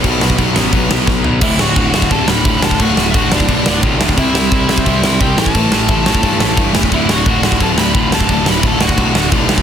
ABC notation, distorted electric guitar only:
X:1
M:4/4
L:1/8
Q:1/4=175
K:D
V:1 name="Distorted electric guitar" clef=bass
[B,,F,B,] [B,,F,B,] [B,,F,B,] [B,,F,B,] [B,,F,B,] [B,,F,B,] [B,,F,B,] [B,,F,B,] | [D,,A,,D,] [D,,A,,D,] [D,,A,,D,] [D,,A,,D,] [D,,A,,D,] [D,,A,,D,] [D,,A,,D,] [D,,A,,D,] | [D,,A,,D,] [D,,A,,D,] [D,,A,,D,] [D,,A,,D,] [D,,A,,D,] [D,,A,,D,] [D,,A,,D,] [D,,A,,D,] | [=C,G,=C] [C,G,C] [C,G,C] [C,G,C] [C,G,C] [C,G,C] [C,G,C] [A,,E,A,] |
[A,,E,A,] [A,,E,A,] [A,,E,A,] [A,,E,A,] [A,,E,A,] [A,,E,A,] [A,,E,A,] [A,,E,A,] | [D,,A,,D,] [D,,A,,D,] [D,,A,,D,] [D,,A,,D,] [D,,A,,D,] [D,,A,,D,] [D,,A,,D,] [D,,A,,D,] | [D,,A,,D,] [D,,A,,D,] [D,,A,,D,] [D,,A,,D,] [D,,A,,D,] [D,,A,,D,] [D,,A,,D,] [D,,A,,D,] |]